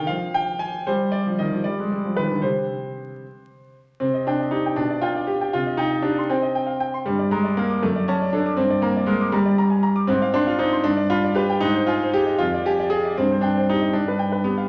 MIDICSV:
0, 0, Header, 1, 2, 480
1, 0, Start_track
1, 0, Key_signature, -3, "minor"
1, 0, Tempo, 519931
1, 805, Time_signature, 6, 3, 24, 8
1, 4177, Tempo, 507185
1, 12337, Tempo, 518135
1, 13764, End_track
2, 0, Start_track
2, 0, Title_t, "Grand piano"
2, 0, Program_c, 0, 0
2, 0, Control_c, 0, 64, 127
2, 0, Note_on_c, 0, 50, 57
2, 0, Note_on_c, 0, 51, 57
2, 0, Note_on_c, 0, 68, 39
2, 0, Note_on_c, 0, 75, 76
2, 0, Note_on_c, 0, 77, 72
2, 0, Note_on_c, 0, 79, 75
2, 64, Note_off_c, 0, 77, 0
2, 64, Note_on_c, 0, 77, 72
2, 80, Note_on_c, 0, 53, 53
2, 105, Control_c, 0, 64, 0
2, 109, Note_off_c, 0, 75, 0
2, 111, Note_off_c, 0, 68, 0
2, 114, Note_off_c, 0, 50, 0
2, 114, Note_off_c, 0, 79, 0
2, 117, Note_off_c, 0, 51, 0
2, 254, Control_c, 0, 64, 127
2, 315, Note_off_c, 0, 77, 0
2, 318, Note_on_c, 0, 79, 73
2, 548, Note_on_c, 0, 80, 71
2, 561, Note_off_c, 0, 79, 0
2, 596, Note_off_c, 0, 53, 0
2, 795, Note_off_c, 0, 80, 0
2, 800, Note_on_c, 0, 72, 68
2, 802, Note_on_c, 0, 55, 58
2, 806, Note_on_c, 0, 67, 35
2, 817, Control_c, 0, 64, 0
2, 993, Control_c, 0, 64, 127
2, 1032, Note_on_c, 0, 74, 68
2, 1039, Note_off_c, 0, 72, 0
2, 1059, Note_off_c, 0, 55, 0
2, 1168, Note_on_c, 0, 53, 52
2, 1274, Note_off_c, 0, 74, 0
2, 1277, Note_off_c, 0, 53, 0
2, 1279, Note_on_c, 0, 75, 63
2, 1290, Note_on_c, 0, 51, 51
2, 1398, Note_off_c, 0, 51, 0
2, 1403, Note_on_c, 0, 53, 48
2, 1480, Note_off_c, 0, 67, 0
2, 1514, Note_off_c, 0, 53, 0
2, 1514, Note_on_c, 0, 74, 61
2, 1517, Note_off_c, 0, 75, 0
2, 1523, Note_on_c, 0, 55, 48
2, 1525, Control_c, 0, 64, 0
2, 1634, Note_off_c, 0, 55, 0
2, 1657, Note_on_c, 0, 56, 49
2, 1685, Control_c, 0, 64, 127
2, 1761, Note_off_c, 0, 56, 0
2, 1769, Note_on_c, 0, 55, 48
2, 1877, Note_off_c, 0, 55, 0
2, 1894, Note_on_c, 0, 53, 46
2, 1996, Note_off_c, 0, 74, 0
2, 1998, Note_on_c, 0, 71, 59
2, 2000, Note_off_c, 0, 53, 0
2, 2015, Note_on_c, 0, 51, 46
2, 2122, Note_off_c, 0, 51, 0
2, 2130, Note_on_c, 0, 50, 46
2, 2233, Note_on_c, 0, 72, 61
2, 2240, Note_off_c, 0, 50, 0
2, 2240, Note_off_c, 0, 71, 0
2, 2240, Note_on_c, 0, 67, 36
2, 2241, Note_on_c, 0, 48, 41
2, 2248, Note_on_c, 0, 60, 36
2, 2252, Control_c, 0, 64, 0
2, 2411, Control_c, 0, 64, 127
2, 2752, Note_off_c, 0, 48, 0
2, 2825, Note_off_c, 0, 67, 0
2, 2830, Note_off_c, 0, 60, 0
2, 2978, Control_c, 0, 64, 0
2, 3456, Note_off_c, 0, 72, 0
2, 3693, Note_on_c, 0, 60, 70
2, 3704, Note_on_c, 0, 48, 54
2, 3820, Note_on_c, 0, 75, 43
2, 3879, Control_c, 0, 64, 127
2, 3935, Note_off_c, 0, 60, 0
2, 3941, Note_on_c, 0, 62, 66
2, 3947, Note_on_c, 0, 79, 45
2, 4010, Note_off_c, 0, 75, 0
2, 4059, Note_on_c, 0, 75, 38
2, 4133, Note_off_c, 0, 79, 0
2, 4164, Note_on_c, 0, 63, 67
2, 4168, Note_on_c, 0, 67, 40
2, 4177, Note_off_c, 0, 62, 0
2, 4249, Note_off_c, 0, 75, 0
2, 4306, Note_on_c, 0, 79, 41
2, 4366, Note_off_c, 0, 67, 0
2, 4398, Note_off_c, 0, 48, 0
2, 4402, Note_on_c, 0, 62, 73
2, 4410, Note_on_c, 0, 47, 54
2, 4412, Note_off_c, 0, 63, 0
2, 4422, Note_off_c, 0, 79, 0
2, 4427, Control_c, 0, 64, 0
2, 4537, Note_on_c, 0, 74, 47
2, 4604, Control_c, 0, 64, 127
2, 4641, Note_on_c, 0, 65, 77
2, 4651, Note_off_c, 0, 62, 0
2, 4651, Note_on_c, 0, 79, 48
2, 4730, Note_off_c, 0, 74, 0
2, 4774, Note_on_c, 0, 74, 42
2, 4848, Note_off_c, 0, 79, 0
2, 4881, Note_on_c, 0, 67, 63
2, 4891, Note_off_c, 0, 65, 0
2, 4969, Note_off_c, 0, 74, 0
2, 5017, Note_on_c, 0, 79, 44
2, 5115, Note_off_c, 0, 47, 0
2, 5131, Note_off_c, 0, 67, 0
2, 5132, Note_on_c, 0, 65, 75
2, 5139, Note_off_c, 0, 79, 0
2, 5140, Note_on_c, 0, 48, 54
2, 5154, Control_c, 0, 64, 0
2, 5253, Note_on_c, 0, 75, 45
2, 5343, Control_c, 0, 64, 127
2, 5359, Note_on_c, 0, 63, 76
2, 5372, Note_on_c, 0, 79, 48
2, 5377, Note_off_c, 0, 65, 0
2, 5450, Note_off_c, 0, 75, 0
2, 5489, Note_on_c, 0, 75, 43
2, 5569, Note_off_c, 0, 79, 0
2, 5596, Note_on_c, 0, 62, 69
2, 5606, Note_on_c, 0, 67, 43
2, 5611, Note_off_c, 0, 63, 0
2, 5688, Note_off_c, 0, 75, 0
2, 5750, Note_on_c, 0, 84, 46
2, 5806, Note_off_c, 0, 67, 0
2, 5849, Note_off_c, 0, 62, 0
2, 5853, Note_on_c, 0, 60, 75
2, 5860, Note_on_c, 0, 79, 48
2, 5876, Control_c, 0, 64, 0
2, 5938, Note_off_c, 0, 84, 0
2, 5971, Note_on_c, 0, 75, 48
2, 6053, Note_off_c, 0, 79, 0
2, 6096, Note_on_c, 0, 79, 49
2, 6169, Note_off_c, 0, 75, 0
2, 6202, Note_on_c, 0, 77, 42
2, 6292, Note_off_c, 0, 79, 0
2, 6333, Note_off_c, 0, 77, 0
2, 6333, Note_on_c, 0, 79, 54
2, 6462, Note_on_c, 0, 84, 46
2, 6531, Note_off_c, 0, 79, 0
2, 6546, Note_off_c, 0, 48, 0
2, 6572, Note_on_c, 0, 55, 70
2, 6579, Note_off_c, 0, 60, 0
2, 6582, Note_on_c, 0, 43, 59
2, 6583, Note_off_c, 0, 84, 0
2, 6700, Note_on_c, 0, 74, 48
2, 6775, Control_c, 0, 64, 127
2, 6815, Note_on_c, 0, 56, 75
2, 6819, Note_off_c, 0, 55, 0
2, 6821, Note_on_c, 0, 82, 50
2, 6895, Note_off_c, 0, 74, 0
2, 6938, Note_on_c, 0, 74, 47
2, 7015, Note_off_c, 0, 82, 0
2, 7059, Note_on_c, 0, 58, 79
2, 7061, Note_off_c, 0, 56, 0
2, 7069, Note_on_c, 0, 70, 46
2, 7134, Note_off_c, 0, 74, 0
2, 7184, Note_on_c, 0, 86, 49
2, 7259, Note_off_c, 0, 70, 0
2, 7282, Note_off_c, 0, 43, 0
2, 7300, Note_on_c, 0, 57, 77
2, 7302, Note_off_c, 0, 58, 0
2, 7304, Note_off_c, 0, 86, 0
2, 7308, Note_on_c, 0, 42, 64
2, 7312, Control_c, 0, 64, 0
2, 7426, Note_on_c, 0, 74, 53
2, 7513, Control_c, 0, 64, 127
2, 7541, Note_off_c, 0, 57, 0
2, 7542, Note_on_c, 0, 61, 84
2, 7549, Note_on_c, 0, 81, 55
2, 7616, Note_off_c, 0, 74, 0
2, 7673, Note_on_c, 0, 74, 52
2, 7737, Note_off_c, 0, 81, 0
2, 7776, Note_on_c, 0, 62, 72
2, 7781, Note_off_c, 0, 61, 0
2, 7785, Note_on_c, 0, 69, 53
2, 7859, Note_off_c, 0, 74, 0
2, 7902, Note_on_c, 0, 86, 52
2, 7975, Note_off_c, 0, 69, 0
2, 8001, Note_off_c, 0, 42, 0
2, 8002, Note_on_c, 0, 60, 81
2, 8009, Note_on_c, 0, 43, 64
2, 8018, Note_off_c, 0, 62, 0
2, 8021, Note_off_c, 0, 86, 0
2, 8030, Control_c, 0, 64, 0
2, 8133, Note_on_c, 0, 74, 57
2, 8183, Control_c, 0, 64, 127
2, 8241, Note_on_c, 0, 58, 79
2, 8244, Note_on_c, 0, 82, 57
2, 8250, Note_off_c, 0, 60, 0
2, 8327, Note_off_c, 0, 74, 0
2, 8381, Note_on_c, 0, 74, 49
2, 8443, Note_off_c, 0, 82, 0
2, 8473, Note_on_c, 0, 56, 77
2, 8484, Note_on_c, 0, 70, 54
2, 8489, Note_off_c, 0, 58, 0
2, 8571, Note_off_c, 0, 74, 0
2, 8611, Note_on_c, 0, 86, 54
2, 8682, Note_off_c, 0, 70, 0
2, 8716, Note_on_c, 0, 55, 83
2, 8724, Note_off_c, 0, 56, 0
2, 8724, Note_on_c, 0, 82, 61
2, 8751, Control_c, 0, 64, 0
2, 8805, Note_off_c, 0, 86, 0
2, 8844, Note_on_c, 0, 74, 55
2, 8920, Note_off_c, 0, 82, 0
2, 8964, Note_on_c, 0, 82, 61
2, 9039, Note_off_c, 0, 74, 0
2, 9077, Note_on_c, 0, 80, 46
2, 9158, Note_off_c, 0, 82, 0
2, 9197, Note_on_c, 0, 82, 57
2, 9203, Note_off_c, 0, 80, 0
2, 9318, Note_on_c, 0, 86, 54
2, 9394, Note_off_c, 0, 82, 0
2, 9405, Note_off_c, 0, 43, 0
2, 9429, Note_on_c, 0, 60, 89
2, 9438, Note_off_c, 0, 55, 0
2, 9441, Note_on_c, 0, 44, 70
2, 9443, Note_off_c, 0, 86, 0
2, 9566, Note_on_c, 0, 77, 58
2, 9625, Control_c, 0, 64, 127
2, 9678, Note_off_c, 0, 60, 0
2, 9678, Note_on_c, 0, 62, 91
2, 9689, Note_on_c, 0, 84, 59
2, 9759, Note_off_c, 0, 77, 0
2, 9803, Note_off_c, 0, 62, 0
2, 9804, Note_on_c, 0, 65, 65
2, 9812, Note_on_c, 0, 77, 55
2, 9881, Note_off_c, 0, 84, 0
2, 9914, Note_on_c, 0, 63, 83
2, 9918, Note_on_c, 0, 72, 52
2, 9926, Note_off_c, 0, 65, 0
2, 10003, Note_off_c, 0, 77, 0
2, 10044, Note_on_c, 0, 84, 53
2, 10116, Note_off_c, 0, 72, 0
2, 10144, Note_off_c, 0, 44, 0
2, 10151, Note_on_c, 0, 62, 89
2, 10162, Note_off_c, 0, 63, 0
2, 10163, Note_on_c, 0, 43, 65
2, 10167, Note_off_c, 0, 84, 0
2, 10180, Control_c, 0, 64, 0
2, 10277, Note_on_c, 0, 74, 58
2, 10368, Control_c, 0, 64, 127
2, 10398, Note_on_c, 0, 65, 96
2, 10401, Note_off_c, 0, 62, 0
2, 10403, Note_on_c, 0, 83, 63
2, 10476, Note_off_c, 0, 74, 0
2, 10538, Note_on_c, 0, 74, 53
2, 10600, Note_off_c, 0, 83, 0
2, 10634, Note_on_c, 0, 67, 78
2, 10642, Note_on_c, 0, 71, 58
2, 10645, Note_off_c, 0, 65, 0
2, 10727, Note_off_c, 0, 74, 0
2, 10774, Note_on_c, 0, 79, 54
2, 10839, Note_off_c, 0, 71, 0
2, 10867, Note_off_c, 0, 43, 0
2, 10878, Note_on_c, 0, 63, 92
2, 10883, Note_off_c, 0, 67, 0
2, 10890, Note_on_c, 0, 44, 66
2, 10893, Note_off_c, 0, 79, 0
2, 10899, Control_c, 0, 64, 0
2, 11016, Note_on_c, 0, 72, 55
2, 11058, Control_c, 0, 64, 127
2, 11125, Note_on_c, 0, 65, 83
2, 11126, Note_off_c, 0, 63, 0
2, 11139, Note_on_c, 0, 80, 58
2, 11207, Note_off_c, 0, 72, 0
2, 11281, Note_on_c, 0, 72, 49
2, 11328, Note_off_c, 0, 80, 0
2, 11370, Note_off_c, 0, 65, 0
2, 11379, Note_on_c, 0, 67, 91
2, 11391, Note_on_c, 0, 68, 52
2, 11460, Note_off_c, 0, 72, 0
2, 11500, Note_on_c, 0, 75, 52
2, 11574, Note_off_c, 0, 68, 0
2, 11590, Note_off_c, 0, 44, 0
2, 11615, Note_on_c, 0, 65, 89
2, 11616, Note_off_c, 0, 67, 0
2, 11616, Note_off_c, 0, 75, 0
2, 11625, Note_on_c, 0, 41, 65
2, 11626, Control_c, 0, 64, 0
2, 11765, Note_on_c, 0, 74, 53
2, 11775, Control_c, 0, 64, 127
2, 11854, Note_off_c, 0, 65, 0
2, 11874, Note_on_c, 0, 67, 89
2, 11880, Note_on_c, 0, 80, 55
2, 11940, Note_off_c, 0, 74, 0
2, 12003, Note_on_c, 0, 74, 51
2, 12058, Note_off_c, 0, 80, 0
2, 12102, Note_on_c, 0, 68, 91
2, 12103, Note_off_c, 0, 67, 0
2, 12180, Note_off_c, 0, 74, 0
2, 12248, Note_on_c, 0, 74, 49
2, 12319, Note_off_c, 0, 41, 0
2, 12339, Note_off_c, 0, 68, 0
2, 12343, Control_c, 0, 64, 0
2, 12351, Note_off_c, 0, 74, 0
2, 12363, Note_on_c, 0, 60, 82
2, 12368, Note_on_c, 0, 43, 65
2, 12500, Note_on_c, 0, 72, 51
2, 12542, Control_c, 0, 64, 127
2, 12583, Note_on_c, 0, 62, 76
2, 12586, Note_off_c, 0, 60, 0
2, 12597, Note_on_c, 0, 79, 53
2, 12667, Note_off_c, 0, 72, 0
2, 12731, Note_on_c, 0, 72, 44
2, 12775, Note_off_c, 0, 79, 0
2, 12816, Note_off_c, 0, 62, 0
2, 12845, Note_on_c, 0, 63, 78
2, 12856, Note_on_c, 0, 67, 48
2, 12902, Note_off_c, 0, 72, 0
2, 12955, Note_on_c, 0, 75, 45
2, 13025, Note_off_c, 0, 67, 0
2, 13047, Note_off_c, 0, 43, 0
2, 13057, Control_c, 0, 64, 0
2, 13063, Note_off_c, 0, 75, 0
2, 13064, Note_on_c, 0, 62, 75
2, 13068, Note_off_c, 0, 63, 0
2, 13074, Note_on_c, 0, 43, 59
2, 13201, Note_on_c, 0, 71, 49
2, 13260, Control_c, 0, 64, 127
2, 13303, Note_on_c, 0, 79, 50
2, 13378, Note_off_c, 0, 71, 0
2, 13424, Note_on_c, 0, 71, 46
2, 13490, Note_off_c, 0, 79, 0
2, 13536, Note_on_c, 0, 59, 73
2, 13538, Note_off_c, 0, 62, 0
2, 13542, Note_on_c, 0, 67, 45
2, 13611, Note_off_c, 0, 71, 0
2, 13661, Note_on_c, 0, 77, 44
2, 13730, Note_off_c, 0, 67, 0
2, 13764, Note_off_c, 0, 43, 0
2, 13764, Note_off_c, 0, 59, 0
2, 13764, Note_off_c, 0, 77, 0
2, 13764, End_track
0, 0, End_of_file